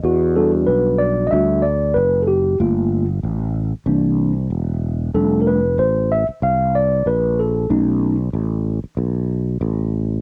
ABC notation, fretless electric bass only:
X:1
M:4/4
L:1/16
Q:"Swing 16ths" 1/4=94
K:Flyd
V:1 name="Fretless electric bass" clef=bass
E,,4 B,,,4 D,,4 ^F,,,4 | G,,,4 A,,,3 z C,,4 E,,,4 | F,,,4 A,,,3 z C,,4 ^A,,,4 | B,,,4 A,,,3 z B,,,4 A,,,4 |]